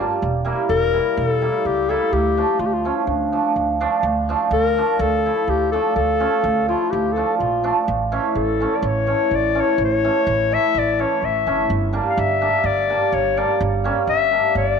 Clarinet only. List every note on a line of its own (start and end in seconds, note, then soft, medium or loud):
0.00 0.20 F4 medium
0.69 1.17 A#4 loud
1.17 1.28 A#4 loud
1.28 1.68 A4 loud
1.67 1.91 G4 loud
1.90 2.15 A4 loud
2.13 2.61 G4 loud
2.60 2.67 F4 medium
2.66 2.75 G4 medium
2.73 2.97 F4 medium
2.96 3.07 E4 medium
3.05 3.79 D4 medium
4.53 5.03 A#4 loud
5.01 5.51 A4 loud
5.50 5.71 G4 medium
5.72 5.94 A4 medium
5.96 6.64 A4 loud
6.69 6.92 F4 medium
6.90 7.14 G4 medium
7.13 7.37 A4 medium
7.37 7.83 F4 medium
8.35 8.77 A4 medium
8.75 8.88 D5 medium
8.86 9.37 C#5 loud
9.36 9.62 D5 loud
9.61 9.82 C#5 loud
9.84 10.55 C#5 loud
10.54 10.80 E5 loud
10.79 11.03 D5 loud
11.01 11.26 C#5 medium
11.25 11.71 E5 medium
12.09 12.21 F5 medium
12.19 12.67 E5 loud
12.66 13.16 D5 loud
13.14 13.40 C#5 medium
13.38 13.61 D5 medium
14.10 14.53 E5 loud
14.57 14.80 D5 loud